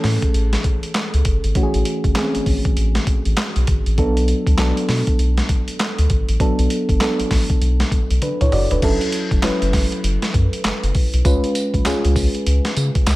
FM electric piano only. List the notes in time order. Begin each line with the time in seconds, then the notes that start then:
Already playing: E3 A3 C#4 G#4 A4
1.55 E3 A3 C#4 F#4
1.63 G#4
2.16 E3 A3 C4 G#4
2.23 C#4
3.98 F#3 B3 D4 A4
4.58 F#3 B3 D4 A4
6.40 F#3 B3 D4 A4
7.00 F#3 B3 D4 A4
8.23 D4 B4
8.41 E4 C#5
8.53 F#4 D5
8.72 D4 B4
8.83 F#3 C#4 E4 A4
9.43 F#3 C#4 E4 B4
11.25 G#3 C#4 F4 B4
11.85 G#3 C#4 F4 G#4